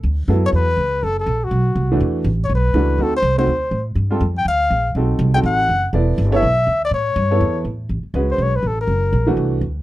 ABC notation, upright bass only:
X:1
M:4/4
L:1/8
Q:"Swing" 1/4=244
K:D
V:1 name="Upright bass" clef=bass
D,,2 F,,2 E,,2 C,,2 | F,,,2 _B,,,2 =B,,,2 =C,,2 | E,,2 A,,,2 B,,,2 C,,2 | D,,2 =C,,2 D,,2 A,,2 |
G,,2 =F,,2 D,,2 _B,,,2 | B,,,2 =C,,2 A,,,2 F,,,2 | E,,,2 G,,,2 B,,,2 D,,2 | A,,2 G,,2 E,,2 A,,2 |
[K:A] A,,, z C,,2 B,,,2 A,,,2 | F,,,2 ^A,,,2 =C,,2 D,,2 |]